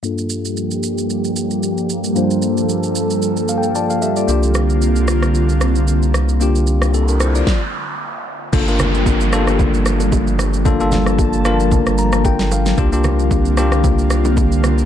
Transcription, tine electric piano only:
0.03 2.12 G2 medium
0.03 2.12 A#3 medium
0.03 2.12 D4 medium
0.03 2.12 F4 medium
0.03 2.13 A4 medium
2.15 4.24 G2 medium
2.15 4.24 A#3 medium
2.15 4.25 D4 medium
2.15 3.73 F4 medium
2.15 3.73 C5 medium
3.49 3.57 F5 medium
3.58 3.74 G5 medium
3.76 3.90 F4 medium
3.76 3.89 D5 medium
3.76 4.25 A5 medium
3.90 4.02 A4 medium
3.90 4.01 F5 medium
4.02 4.16 G4 medium
4.02 4.16 E5 medium
4.17 4.28 F4 medium
4.17 4.42 D5 medium
4.27 6.36 A#3 medium
4.27 6.37 D4 medium
4.27 6.37 F4 medium
4.27 6.37 G4 medium
6.40 7.44 A#3 medium
6.40 6.93 D4 medium
6.40 6.93 F4 medium
6.40 6.94 G4 medium
6.94 7.08 C4 medium
6.94 7.08 A4 medium
7.09 7.20 D4 medium
7.09 7.20 A#4 medium
7.21 7.35 E4 medium
7.21 7.34 C5 medium
7.35 7.61 F4 medium
7.35 7.60 D5 medium
8.53 8.65 A#3 medium
8.53 8.65 D4 medium
8.53 8.65 F4 medium
8.53 8.65 A4 medium
8.68 9.21 A#3 medium
8.68 9.21 D4 medium
8.68 9.21 F4 medium
8.68 9.21 A#4 medium
9.33 10.18 A#3 medium
9.33 10.18 D4 medium
9.33 10.19 F4 medium
9.33 10.19 A4 medium
10.65 10.77 A#3 medium
10.65 10.77 D4 medium
10.65 10.77 F4 medium
10.65 10.78 A4 medium
10.80 11.33 A#3 medium
10.80 11.33 D4 medium
10.80 11.34 F4 medium
10.80 11.34 A4 medium
11.45 12.31 A#3 medium
11.45 12.31 D4 medium
11.45 12.31 F4 medium
11.45 12.31 A#4 medium
11.99 12.23 A#5 medium
12.25 12.50 G5 medium
12.52 12.76 F5 medium
12.78 12.89 A#3 medium
12.78 12.90 D4 medium
12.78 12.90 F4 medium
12.78 12.90 G4 medium
12.92 13.46 A#3 medium
12.92 13.46 D4 medium
12.92 13.46 F4 medium
12.92 13.46 G4 medium
13.57 14.43 A#3 medium
13.57 14.43 D4 medium
13.57 14.43 F4 medium
13.57 14.44 G4 medium

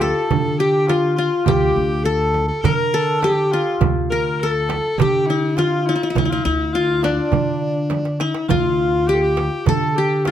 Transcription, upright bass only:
0.00 0.11 D2 medium
0.31 1.27 D3 medium
1.47 1.71 D2 medium
1.76 2.49 D2 medium
2.63 3.61 D3 medium
3.81 4.78 D2 medium
4.98 5.95 D3 medium
6.15 6.40 D2 medium
6.45 7.18 D2 medium
7.33 8.30 D3 medium
8.50 9.47 D2 medium
9.67 10.31 D3 medium

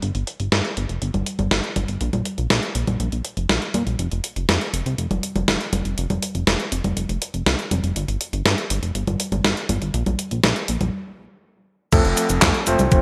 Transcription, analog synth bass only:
0.03 0.12 G1 loud
0.15 0.24 G1 medium
0.40 0.49 G1 medium
0.52 0.61 G2 loud
0.77 0.86 G1 medium
0.89 0.98 F1 medium
1.02 1.11 G1 loud
1.14 1.23 G1 medium
1.39 1.48 G1 medium
1.51 1.60 G1 loud
1.76 1.85 G1 medium
1.89 1.98 G1 medium
2.01 2.10 A#1 loud
2.13 2.22 A#1 medium
2.38 2.47 A#1 medium
2.50 2.60 A#1 loud
2.75 2.84 A#1 medium
2.88 2.97 A#1 medium
3.00 3.09 A#1 loud
3.12 3.22 A#1 medium
3.37 3.46 F1 medium
3.50 3.59 A#1 loud
3.74 3.83 A#2 medium
3.87 3.96 A#1 medium
3.99 4.08 F1 loud
4.12 4.21 F1 medium
4.36 4.45 F1 medium
4.49 4.58 F2 loud
4.73 4.83 F1 medium
4.86 4.95 C2 medium
4.98 5.07 F1 loud
5.11 5.20 F1 medium
5.36 5.45 F1 medium
5.48 5.57 F1 loud
5.73 5.82 F1 medium
5.85 5.94 F1 medium
5.98 6.07 F1 loud
6.10 6.19 F1 medium
6.35 6.44 F1 medium
6.47 6.56 F1 loud
6.72 6.81 F1 medium
6.84 6.94 F1 medium
6.97 7.06 F1 medium
7.09 7.18 F1 medium
7.34 7.43 F1 medium
7.46 7.55 C2 loud
7.71 7.80 F1 medium
7.84 7.93 F1 medium
7.96 8.05 G1 loud
8.08 8.17 G1 medium
8.33 8.42 G1 medium
8.45 8.55 G2 loud
8.70 8.79 G1 medium
8.83 8.92 F1 medium
8.95 9.04 G1 medium
9.07 9.17 G1 medium
9.32 9.41 G1 medium
9.45 9.54 G1 loud
9.69 9.78 G1 medium
9.82 9.91 G1 medium
9.94 10.03 A#1 loud
10.07 10.16 A#1 medium
10.31 10.41 A#1 medium
10.44 10.53 A#1 loud
10.69 10.78 A#1 medium
10.81 10.90 A#1 medium
11.93 12.02 F1 loud
12.05 12.14 F1 medium
12.30 12.39 F1 medium
12.42 12.51 F2 loud
12.67 12.76 F1 medium
12.80 12.89 C2 medium
12.92 13.01 F1 loud

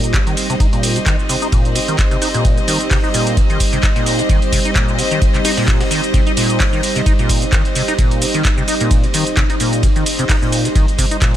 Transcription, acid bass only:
0.00 0.16 A#2 medium
0.14 0.18 C3 medium
0.27 0.35 D#3 medium
0.50 0.55 C3 medium
0.60 0.67 D#4 medium
0.73 0.97 A#2 medium
0.96 0.99 C3 medium
1.06 1.17 D#3 medium
1.29 1.36 C3 medium
1.42 1.48 D#4 medium
1.53 1.77 A#2 medium
1.76 1.80 C3 medium
1.88 1.97 D#3 medium
2.11 2.17 C3 medium
2.22 2.29 D#4 medium
2.34 2.59 A#2 medium
2.58 2.61 C3 medium
2.68 2.78 D#3 medium
2.91 2.98 C3 medium
3.04 3.09 D#4 medium
3.14 3.39 A#2 medium
3.37 3.41 C3 medium
3.50 3.58 D#3 medium
3.73 3.79 C3 medium
3.83 3.90 D#4 medium
3.96 4.20 A#2 medium
4.19 4.22 C3 medium
4.29 4.40 D#3 medium
4.52 4.59 C3 medium
4.65 4.71 D#4 medium
4.76 5.00 A#2 medium
4.99 5.03 C3 medium
5.11 5.20 D#3 medium
5.34 5.40 C3 medium
5.45 5.52 D#4 medium
5.57 5.82 A#2 medium
5.80 5.84 C3 medium
5.91 6.01 D#3 medium
6.14 6.21 C3 medium
6.27 6.32 D#4 medium
6.37 6.62 A#2 medium
6.60 6.64 C3 medium
6.73 6.81 D#3 medium
6.96 7.02 C3 medium
7.06 7.13 D#4 medium
7.19 7.44 A#2 medium
7.42 7.46 C3 medium
7.52 7.63 D#3 medium
7.76 7.83 C3 medium
7.88 7.94 D#4 medium
7.99 8.23 A#2 medium
8.22 8.26 C3 medium
8.34 8.43 D#3 medium
8.57 8.63 C3 medium
8.68 8.75 D#4 medium
8.81 9.05 A#2 medium
9.04 9.07 C3 medium
9.14 9.25 D#3 medium
9.37 9.44 C3 medium
9.50 9.55 D#4 medium
9.60 9.85 A#2 medium
9.83 9.87 C3 medium
9.96 10.04 D#3 medium
10.19 10.25 C3 medium
10.29 10.36 D#4 medium
10.42 10.67 A#2 medium
10.65 10.69 C3 medium
10.76 10.86 D#3 medium
10.99 11.06 C3 medium
11.11 11.17 D#4 medium
11.22 11.37 A#2 medium

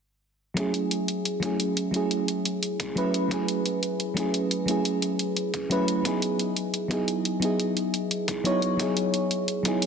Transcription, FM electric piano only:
0.54 1.39 F#3 medium
0.54 1.40 A3 medium
0.54 1.41 C#4 medium
0.54 1.41 E4 medium
0.60 1.42 G#4 medium
1.40 1.90 F#3 medium
1.40 1.91 A3 medium
1.40 1.92 C#4 medium
1.40 1.93 E4 medium
1.45 1.93 G#4 medium
1.91 2.93 F#3 medium
1.91 2.94 A3 medium
1.91 2.95 C#4 medium
1.91 2.95 E4 medium
1.96 2.96 G#4 medium
2.95 3.27 F#3 medium
2.95 3.28 A3 medium
2.95 3.29 C#4 medium
2.95 3.29 E4 medium
2.95 3.30 B4 medium
3.28 4.13 F#3 medium
3.28 4.14 A3 medium
3.28 4.15 C#4 medium
3.28 4.15 E4 medium
3.34 4.16 G#4 medium
4.14 4.64 F#3 medium
4.14 4.66 A3 medium
4.14 4.66 C#4 medium
4.14 4.67 E4 medium
4.19 4.67 G#4 medium
4.66 5.68 F#3 medium
4.66 5.68 A3 medium
4.66 5.69 C#4 medium
4.66 5.70 E4 medium
4.71 5.70 G#4 medium
5.70 6.01 F#3 medium
5.70 6.03 A3 medium
5.70 6.03 C#4 medium
5.70 6.04 E4 medium
5.70 6.04 B4 medium
6.02 6.87 F#3 medium
6.02 6.88 B3 medium
6.02 6.89 D#4 medium
6.02 6.90 E4 medium
6.08 6.90 G#4 medium
6.88 7.38 F#3 medium
6.88 7.40 B3 medium
6.88 7.40 D#4 medium
6.88 7.41 E4 medium
6.93 7.42 G#4 medium
7.40 8.42 F#3 medium
7.40 8.43 B3 medium
7.40 8.43 D#4 medium
7.40 8.44 E4 medium
7.45 8.45 G#4 medium
8.44 8.76 F#3 medium
8.44 8.77 B3 medium
8.44 8.78 D#4 medium
8.44 8.78 E4 medium
8.44 8.78 C#5 loud
8.77 9.62 F#3 medium
8.77 9.63 B3 medium
8.77 9.63 D#4 medium
8.77 9.64 E4 medium
8.82 9.65 G#4 medium
9.63 9.86 F#3 medium
9.63 9.86 B3 medium
9.63 9.86 D#4 medium
9.63 9.86 E4 medium
9.68 9.86 G#4 medium

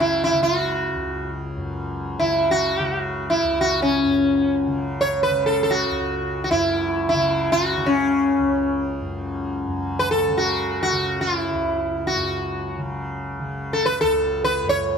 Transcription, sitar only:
0.00 0.23 E4 medium
0.24 0.41 E4 medium
0.43 1.29 F#4 medium
2.19 2.48 E4 medium
2.51 3.25 F#4 medium
3.30 3.60 E4 medium
3.61 3.82 F#4 medium
3.82 4.57 C#4 medium
5.01 5.23 C#5 medium
5.23 5.46 B4 medium
5.46 5.62 A4 medium
5.63 5.70 A4 medium
5.71 6.43 F#4 medium
6.44 6.50 F#4 medium
6.51 7.08 E4 medium
7.09 7.52 E4 medium
7.52 7.87 F#4 medium
7.86 8.79 C#4 medium
9.99 10.11 B4 medium
10.11 10.38 A4 medium
10.37 10.81 F#4 medium
10.83 11.21 F#4 medium
11.21 11.36 F4 medium
11.36 12.07 E4 medium
12.07 12.79 F#4 medium
13.73 13.86 A4 medium
13.86 14.00 B4 medium
14.01 14.42 A4 medium
14.44 14.69 B4 medium
14.69 14.98 C#5 medium

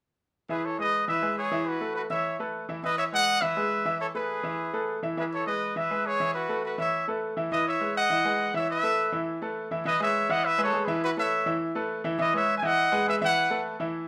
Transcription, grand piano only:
0.49 0.73 E3 medium
0.49 0.73 E4 medium
0.49 0.74 E5 medium
0.78 1.02 G#3 medium
0.78 1.03 G#4 medium
0.78 1.03 B4 medium
1.08 1.20 E3 medium
1.08 1.20 E4 medium
1.08 1.20 E5 medium
1.22 1.46 G#3 medium
1.22 1.46 G#4 medium
1.22 1.47 B4 medium
1.51 1.75 E3 medium
1.51 1.76 E4 medium
1.51 1.76 E5 medium
1.81 2.05 A3 medium
1.81 2.05 A4 medium
1.81 2.05 B4 medium
2.10 2.34 E3 medium
2.10 2.34 E4 medium
2.10 2.34 E5 medium
2.39 2.63 A3 medium
2.39 2.64 A4 medium
2.39 2.64 B4 medium
2.69 2.81 E3 medium
2.69 2.81 E4 medium
2.69 2.81 E5 medium
2.83 3.07 E3 medium
2.83 3.07 E4 medium
2.83 3.08 E5 medium
3.12 3.36 G#3 medium
3.12 3.37 G#4 medium
3.12 3.37 B4 medium
3.42 3.54 E3 medium
3.42 3.54 E4 medium
3.42 3.54 E5 medium
3.56 3.80 G#3 medium
3.56 3.81 G#4 medium
3.56 3.81 B4 medium
3.85 4.09 E3 medium
3.85 4.10 E4 medium
3.85 4.10 E5 medium
4.15 4.39 A3 medium
4.15 4.39 A4 medium
4.15 4.39 B4 medium
4.43 4.68 E3 medium
4.43 4.68 E4 medium
4.43 4.68 E5 medium
4.73 4.97 A3 medium
4.73 4.98 A4 medium
4.73 4.98 B4 medium
5.03 5.15 E3 medium
5.03 5.15 E4 medium
5.03 5.15 E5 medium
5.17 5.41 E3 medium
5.17 5.42 E4 medium
5.17 5.42 E5 medium
5.46 5.71 G#3 medium
5.46 5.71 G#4 medium
5.46 5.71 B4 medium
5.76 5.88 E3 medium
5.76 5.88 E4 medium
5.76 5.88 E5 medium
5.91 6.15 G#3 medium
5.91 6.15 G#4 medium
5.91 6.15 B4 medium
6.20 6.44 E3 medium
6.20 6.44 E4 medium
6.20 6.44 E5 medium
6.49 6.73 A3 medium
6.49 6.73 A4 medium
6.49 6.73 B4 medium
6.78 7.02 E3 medium
6.78 7.02 E4 medium
6.78 7.03 E5 medium
7.08 7.32 A3 medium
7.08 7.32 A4 medium
7.08 7.32 B4 medium
7.37 7.49 E3 medium
7.37 7.49 E4 medium
7.37 7.49 E5 medium
7.52 7.76 E3 medium
7.52 7.76 E4 medium
7.52 7.76 E5 medium
7.81 8.05 G#3 medium
7.81 8.05 G#4 medium
7.81 8.05 B4 medium
8.10 8.22 E3 medium
8.10 8.22 E4 medium
8.10 8.22 E5 medium
8.25 8.49 G#3 medium
8.25 8.49 G#4 medium
8.25 8.49 B4 medium
8.54 8.78 E3 medium
8.54 8.78 E4 medium
8.54 8.78 E5 medium
8.83 9.07 A3 medium
8.83 9.07 A4 medium
8.83 9.08 B4 medium
9.12 9.36 E3 medium
9.12 9.36 E4 medium
9.12 9.37 E5 medium
9.42 9.66 A3 medium
9.42 9.66 A4 medium
9.42 9.66 B4 medium
9.71 9.83 E3 medium
9.71 9.83 E4 medium
9.71 9.83 E5 medium
9.85 9.97 E3 medium
9.85 9.98 E4 medium
9.85 9.98 E5 medium
10.00 10.24 G#3 medium
10.00 10.24 G#4 medium
10.00 10.24 B4 medium
10.29 10.53 E3 medium
10.29 10.53 E4 medium
10.29 10.54 E5 medium
10.58 10.70 G#3 medium
10.58 10.71 G#4 medium
10.58 10.71 B4 medium
10.73 10.85 G#3 medium
10.73 10.85 G#4 medium
10.73 10.85 B4 medium
10.87 11.12 E3 medium
10.87 11.12 E4 medium
10.87 11.12 E5 loud
11.17 11.41 A3 medium
11.17 11.41 A4 medium
11.17 11.41 B4 medium
11.46 11.70 E3 medium
11.46 11.70 E4 medium
11.46 11.70 E5 medium
11.75 11.99 A3 medium
11.75 11.99 A4 medium
11.75 11.99 B4 medium
12.04 12.16 E3 loud
12.04 12.17 E4 medium
12.04 12.17 E5 medium
12.19 12.31 E3 medium
12.19 12.31 E4 medium
12.19 12.31 E5 medium
12.33 12.57 G#3 medium
12.33 12.58 G#4 medium
12.33 12.58 B4 medium
12.62 12.87 E3 medium
12.62 12.87 E4 medium
12.62 12.87 E5 medium
12.92 13.04 G#3 medium
12.92 13.04 G#4 medium
12.92 13.04 B4 medium
13.07 13.19 G#3 medium
13.07 13.19 G#4 medium
13.07 13.19 B4 medium
13.21 13.45 E3 medium
13.21 13.45 E4 medium
13.21 13.45 E5 loud
13.50 13.74 A3 medium
13.50 13.75 A4 medium
13.50 13.75 B4 medium
13.80 14.04 E3 medium
13.80 14.04 E4 medium
13.80 14.04 E5 medium

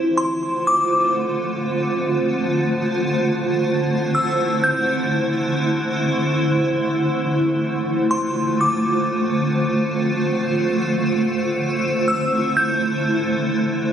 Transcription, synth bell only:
0.18 0.64 C6 medium
0.67 1.14 D6 medium
4.15 4.61 E6 medium
4.64 5.10 G6 medium
8.11 8.57 C6 medium
8.61 9.07 D6 medium
12.08 12.54 E6 medium
12.57 13.04 G6 medium

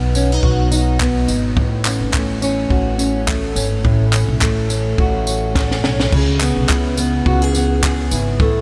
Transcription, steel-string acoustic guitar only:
0.00 1.58 B2 medium
0.00 0.99 B3 medium
0.00 0.15 D#4 medium
0.00 0.43 F#4 medium
0.16 0.32 C#4 medium
0.32 0.70 D#4 medium
0.44 2.70 F#4 medium
0.71 1.27 D#4 medium
1.00 1.63 B3 medium
1.28 1.63 D#4 medium
1.57 3.83 A2 medium
1.86 2.41 C#4 medium
2.15 3.26 A3 medium
2.42 2.98 C#4 medium
2.70 4.98 F#4 medium
2.98 3.55 C#4 medium
3.27 4.40 A3 medium
3.55 4.13 C#4 medium
3.84 6.12 A2 medium
4.14 4.70 C#4 medium
4.41 5.55 A3 medium
4.70 5.27 C#4 medium
5.00 6.19 F#4 medium
5.27 5.84 C#4 medium
5.56 6.19 A3 medium
5.84 6.44 C#4 medium
6.13 8.40 C#3 medium
6.41 6.96 B3 medium
6.69 8.12 E4 medium
6.97 7.55 B3 medium
7.26 7.42 F#4 medium
7.42 7.83 G#4 medium
7.56 8.47 B3 medium
7.84 8.61 G#4 medium
8.12 8.61 E4 medium
8.41 8.61 A3 medium

